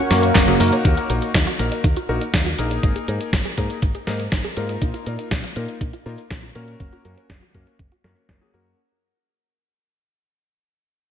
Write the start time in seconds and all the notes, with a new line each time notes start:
Already playing: A#4 C#5 F#5 C#6
0.10 F#2 A#3 C#4 F#4 A#4, snare, open hi-hat, cabasa
0.23 C#5, closed hi-hat, cabasa
0.35 F#1 C#4, kick, snare, clap, closed hi-hat, cabasa
0.48 A#3 C#4 F#4 G#4, closed hi-hat, high tom
0.60 F#2 A#3 D#4 F#4 A#4, open hi-hat, cabasa
0.73 C#5, closed hi-hat, cabasa
0.85 D#2 D#4, kick, closed hi-hat
0.97 F#4, closed hi-hat
1.10 A#1 A#3 D#4 F#4 A#4, closed hi-hat
1.22 D#5, closed hi-hat
1.34 D#2 D#4, kick, snare, closed hi-hat
1.47 F#4, closed hi-hat
1.59 A#1 A#3 D#4 F#4 A#4, closed hi-hat
1.72 D#5, closed hi-hat
1.84 D#2 D#4, kick, closed hi-hat
1.97 F#4, closed hi-hat
2.09 A#1 A#3 D#4 F#4 A#4
2.21 D#5, closed hi-hat
2.34 D#2 D#4, kick, snare, closed hi-hat
2.46 F#4, closed hi-hat
2.59 A#1 A#3 D#4 G#4 A#4, closed hi-hat
2.71 D#5, closed hi-hat
2.83 G#1 D#4, kick, closed hi-hat
2.96 G#4, closed hi-hat
3.08 G#2 A#3 D#4 G#4 A#4, closed hi-hat
3.21 D#5, closed hi-hat
3.33 G#1 D#4, kick, snare, closed hi-hat
3.45 G#4, closed hi-hat
3.58 G#2 A#3 D#4 G#4 A#4, kick, closed hi-hat
3.70 D#5, closed hi-hat
3.82 G#1 D#4, kick, closed hi-hat
3.95 G#4, closed hi-hat
4.07 G#2 A#3 D#4 G#4 A#4, snare
4.20 D#5, closed hi-hat
4.32 G#1 D#4, kick, snare, closed hi-hat
4.44 G#4, closed hi-hat
4.57 G#2 A#3 D#4 F4 A#4, closed hi-hat
4.69 D#5, closed hi-hat
4.82 A#1 D#4, kick, closed hi-hat
4.94 F4, closed hi-hat
5.06 A#2 A#3 D#4 F4 A#4, closed hi-hat
5.19 D#5, closed hi-hat
5.31 A#1 D#4, kick, snare, closed hi-hat
5.44 F4, closed hi-hat
5.56 A#2 A#3 D#4 F4 A#4, closed hi-hat
5.68 D#5, closed hi-hat
5.81 A#1 D#4, kick, closed hi-hat
5.93 F4, closed hi-hat
6.06 A#2 A#3 D#4 F4 A#4
6.18 D#5, closed hi-hat
6.30 A#1 D#4, kick, snare, closed hi-hat
6.43 F4, closed hi-hat
6.55 A#2 A#3 C#4 F#4 A#4, closed hi-hat
6.68 D#5, closed hi-hat
6.80 F#1 C#4, kick, closed hi-hat
6.93 F#4, closed hi-hat
7.05 F#2 A#3 C#4 F#4 A#4, closed hi-hat
7.17 C#5, closed hi-hat
7.30 F#1 C#4, kick, snare, closed hi-hat
7.42 F#4, closed hi-hat
7.55 F#2 A#3 C#4 F#4 A#4, kick, closed hi-hat
7.67 C#5, closed hi-hat
7.79 F#1 C#4, kick, closed hi-hat
7.92 F#4, closed hi-hat
8.04 F#2 A#3 C#4 F#4 A#4, snare
8.17 C#5, closed hi-hat
8.29 F#1 C#4, kick, snare, closed hi-hat
8.41 A#3 C#4 F#4 G#4, closed hi-hat
8.54 F#2 A#3 C#4 F#4 A#4, closed hi-hat
8.66 closed hi-hat